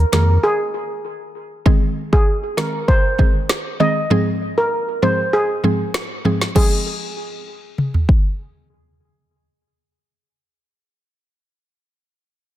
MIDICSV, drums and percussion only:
0, 0, Header, 1, 2, 480
1, 0, Start_track
1, 0, Key_signature, -4, "minor"
1, 0, Tempo, 612245
1, 1301, Time_signature, 4, 2, 24, 8
1, 9848, End_track
2, 0, Start_track
2, 0, Title_t, "Drums"
2, 101, Note_on_c, 9, 38, 126
2, 101, Note_on_c, 9, 42, 90
2, 179, Note_off_c, 9, 42, 0
2, 180, Note_off_c, 9, 38, 0
2, 1301, Note_on_c, 9, 36, 115
2, 1379, Note_off_c, 9, 36, 0
2, 1668, Note_on_c, 9, 36, 85
2, 1746, Note_off_c, 9, 36, 0
2, 2022, Note_on_c, 9, 38, 116
2, 2100, Note_off_c, 9, 38, 0
2, 2261, Note_on_c, 9, 36, 103
2, 2339, Note_off_c, 9, 36, 0
2, 2501, Note_on_c, 9, 36, 93
2, 2579, Note_off_c, 9, 36, 0
2, 2740, Note_on_c, 9, 37, 90
2, 2740, Note_on_c, 9, 38, 112
2, 2818, Note_off_c, 9, 37, 0
2, 2818, Note_off_c, 9, 38, 0
2, 4660, Note_on_c, 9, 37, 87
2, 4660, Note_on_c, 9, 38, 112
2, 4738, Note_off_c, 9, 37, 0
2, 4738, Note_off_c, 9, 38, 0
2, 5029, Note_on_c, 9, 38, 66
2, 5108, Note_off_c, 9, 38, 0
2, 5141, Note_on_c, 9, 36, 100
2, 5141, Note_on_c, 9, 49, 81
2, 5219, Note_off_c, 9, 36, 0
2, 5220, Note_off_c, 9, 49, 0
2, 6101, Note_on_c, 9, 47, 54
2, 6180, Note_off_c, 9, 47, 0
2, 6227, Note_on_c, 9, 43, 68
2, 6306, Note_off_c, 9, 43, 0
2, 6341, Note_on_c, 9, 36, 87
2, 6419, Note_off_c, 9, 36, 0
2, 9848, End_track
0, 0, End_of_file